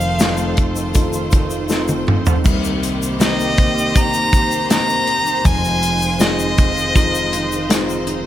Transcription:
0.00 2.41 F1 medium
0.00 2.41 F2 medium
0.00 5.41 D#3 medium
0.00 2.45 F3 medium
0.00 2.42 A3 medium
0.00 0.19 D#4 medium
0.00 2.42 F4 medium
0.00 2.41 C5 medium
0.00 0.96 F5 medium
0.00 shaker soft
0.19 0.93 A3 medium
0.19 1.69 C4 medium
0.19 1.32 D#4 medium
0.19 0.93 D#4 soft
0.19 0.93 F4 medium
0.19 2.52 A4 medium
0.19 snare loud
0.19 closed hi-hat medium
0.19 shaker medium
0.37 shaker soft
0.57 kick medium
0.57 closed hi-hat medium
0.76 shaker medium
0.94 1.67 A3 medium
0.94 1.67 D#4 soft
0.94 1.68 F4 medium
0.94 kick medium
0.94 closed hi-hat medium
0.94 shaker medium
1.13 shaker medium
1.31 2.06 D#4 medium
1.31 kick medium
1.31 closed hi-hat medium
1.31 shaker soft
1.50 shaker soft
1.69 2.42 A3 soft
1.69 3.18 C4 medium
1.69 2.43 D#4 soft
1.69 2.43 F4 medium
1.69 snare medium
1.69 shaker medium
1.88 high tom medium
1.88 shaker soft
2.06 3.19 D#4 medium
2.06 mid tom medium
2.26 floor tom medium
2.26 shaker soft
2.44 5.40 C2 medium
2.44 5.44 C3 medium
2.44 5.42 A#3 medium
2.44 5.42 G4 medium
2.44 8.26 C5 medium
2.44 kick loud
2.44 crash medium
2.44 shaker medium
2.64 shaker soft
2.83 closed hi-hat medium
2.83 shaker soft
3.02 shaker medium
3.19 4.68 A#3 medium
3.19 3.92 A#3 soft
3.19 3.93 C4 soft
3.19 4.31 D#4 soft
3.19 3.93 D#4 medium
3.19 5.52 G4 medium
3.19 3.99 D#5 medium
3.19 snare loud
3.19 closed hi-hat medium
3.19 shaker medium
3.40 shaker soft
3.58 kick medium
3.58 closed hi-hat medium
3.78 shaker soft
3.95 4.68 A#3 soft
3.95 4.68 C4 soft
3.95 4.68 D#4 medium
3.95 4.70 A#5 loud
3.95 kick medium
3.95 closed hi-hat medium
3.95 shaker medium
4.14 shaker medium
4.32 5.07 D#4 medium
4.32 kick medium
4.32 closed hi-hat medium
4.32 shaker soft
4.51 shaker medium
4.69 5.52 A#3 medium
4.69 5.43 A#3 soft
4.69 5.43 C4 soft
4.69 5.44 D#4 medium
4.69 5.47 A#5 loud
4.69 snare loud
4.69 closed hi-hat medium
4.69 shaker medium
4.89 shaker soft
5.07 6.20 D#4 medium
5.07 closed hi-hat medium
5.26 shaker soft
5.44 8.26 F1 medium
5.44 8.26 F2 medium
5.44 8.26 D#3 medium
5.44 8.26 F3 medium
5.44 8.26 G#3 medium
5.44 8.26 F4 medium
5.44 6.22 G#5 medium
5.44 kick medium
5.44 closed hi-hat medium
5.44 shaker medium
5.64 shaker soft
5.83 closed hi-hat medium
5.83 shaker soft
6.02 shaker medium
6.19 6.92 G#3 soft
6.19 7.69 C4 medium
6.19 6.93 D#4 soft
6.19 7.32 D#4 medium
6.19 6.93 F4 medium
6.19 8.26 G#4 medium
6.19 8.08 D#5 medium
6.19 snare loud
6.19 closed hi-hat medium
6.19 shaker medium
6.39 shaker soft
6.58 kick medium
6.58 closed hi-hat medium
6.78 shaker soft
6.95 7.68 G#3 soft
6.95 7.68 D#4 soft
6.95 7.68 F4 medium
6.95 kick medium
6.95 closed hi-hat medium
6.95 shaker medium
7.14 shaker medium
7.32 8.06 D#4 medium
7.32 closed hi-hat medium
7.32 shaker soft
7.52 shaker soft
7.69 8.26 G#3 soft
7.69 8.26 C4 medium
7.69 8.26 D#4 soft
7.69 8.26 F4 medium
7.69 snare loud
7.69 closed hi-hat medium
7.69 shaker medium
7.89 shaker soft
8.07 8.26 D#4 medium
8.07 closed hi-hat medium

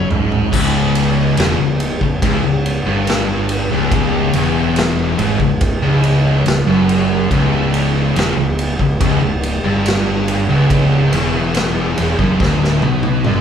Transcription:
0.00 0.10 F#2 loud
0.10 0.50 G#1 medium
0.10 0.52 G#2 loud
0.10 floor tom loud
0.32 floor tom medium
0.53 1.34 C#1 medium
0.53 1.37 C#2 loud
0.53 kick loud
0.53 crash loud
0.95 ride medium
1.37 1.57 E1 loud
1.37 1.58 E2 loud
1.37 snare loud
1.37 ride loud
1.59 1.99 C#1 medium
1.59 1.93 C#2 medium
1.80 ride medium
2.01 2.21 C#1 medium
2.01 2.21 C#2 medium
2.01 kick medium
2.22 2.42 C#1 loud
2.22 2.42 C#2 loud
2.22 kick loud
2.22 ride loud
2.43 2.83 C#1 medium
2.43 2.77 C#2 medium
2.66 ride medium
2.86 3.67 G1 loud
2.86 3.70 G2 loud
3.07 snare loud
3.07 ride loud
3.49 ride medium
3.71 4.30 C#1 loud
3.71 4.33 C#2 loud
3.92 kick loud
3.92 ride loud
4.33 5.15 E1 loud
4.33 5.18 E2 loud
4.33 ride medium
4.76 snare loud
4.76 ride loud
5.19 5.39 G#1 medium
5.19 5.39 G#2 loud
5.19 ride medium
5.40 5.80 C#1 medium
5.40 5.74 C#2 medium
5.40 kick medium
5.61 kick loud
5.61 ride loud
5.82 6.42 C#1 medium
5.82 6.45 C#2 loud
6.04 ride medium
6.46 6.66 C#1 medium
6.46 6.67 C#2 medium
6.46 snare loud
6.46 ride loud
6.67 7.27 F#1 loud
6.67 7.30 F#2 loud
6.89 ride medium
7.31 8.12 C#1 medium
7.31 8.15 C#2 loud
7.31 kick loud
7.31 ride medium
7.74 ride medium
8.15 8.35 E1 loud
8.15 8.36 E2 loud
8.15 snare loud
8.15 ride loud
8.37 8.76 C#1 medium
8.37 8.72 C#2 medium
8.59 ride medium
8.79 8.99 C#1 medium
8.79 9.00 C#2 medium
8.79 kick medium
9.00 9.20 C#1 loud
9.00 9.21 C#2 loud
9.00 kick loud
9.00 ride loud
9.21 9.61 C#1 medium
9.21 9.57 C#2 medium
9.43 ride medium
9.64 10.45 G1 loud
9.64 10.48 G2 loud
9.86 snare loud
9.86 ride loud
10.28 ride medium
10.49 11.09 C#1 loud
10.49 11.14 C#2 loud
10.70 kick loud
10.70 ride loud
11.12 11.93 E1 loud
11.12 11.97 E2 loud
11.12 ride medium
11.54 snare loud
11.54 ride loud
11.98 12.18 E1 medium
11.98 12.18 E2 loud
11.98 ride medium
12.19 12.39 F#1 loud
12.19 12.39 F#2 loud
12.19 kick medium
12.40 12.80 D1 loud
12.40 12.82 D2 loud
12.40 kick loud
12.40 snare medium
12.64 snare medium
12.82 13.22 B1 loud
12.82 13.24 B2 loud
12.82 high tom medium
13.03 high tom medium
13.24 13.41 F#1 medium
13.24 13.41 F#2 loud
13.24 mid tom medium

